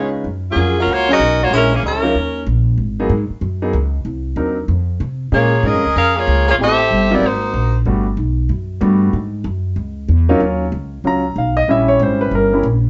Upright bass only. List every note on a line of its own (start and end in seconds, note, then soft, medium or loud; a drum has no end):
0.00 0.22 C#3 medium
0.24 0.55 F#2 medium
0.56 0.86 F2 medium
0.87 1.18 C#2 medium
1.19 1.50 B1 medium
1.51 1.82 A#1 medium
1.83 2.14 C#2 medium
2.15 2.46 D#2 medium
2.46 2.77 A#1 medium
2.78 3.09 G#1 medium
3.09 3.28 G#2 loud
3.30 muted upright bass stroke soft
3.41 3.72 F#2 medium
3.73 4.04 C#2 medium
4.05 4.35 C2 medium
4.36 4.67 D#2 medium
4.68 4.99 F2 medium
5.00 5.31 C3 medium
5.32 5.62 A#2 medium
5.63 5.74 G#2 medium
5.74 5.85 F2 medium
5.86 5.95 C#2 medium
5.96 6.27 F2 medium
6.27 6.58 C#2 medium
6.58 6.90 A1 medium
6.91 7.21 G1 medium
7.21 7.53 G#1 medium
7.54 7.85 A#1 medium
7.85 8.16 G1 medium
8.17 8.49 B1 medium
8.49 8.81 F#2 medium
8.81 9.12 G2 loud
9.13 9.44 G#2 medium
9.44 9.75 F#2 loud
9.76 10.07 C#2 medium
10.08 10.40 E2 medium
10.40 10.71 D#2 medium
10.72 11.03 C#2 medium
11.04 11.35 C#2 medium
11.36 11.67 B1 medium
11.68 11.99 A#1 medium
11.99 12.31 G#1 medium
12.31 12.62 G1 medium
12.63 12.90 A#1 medium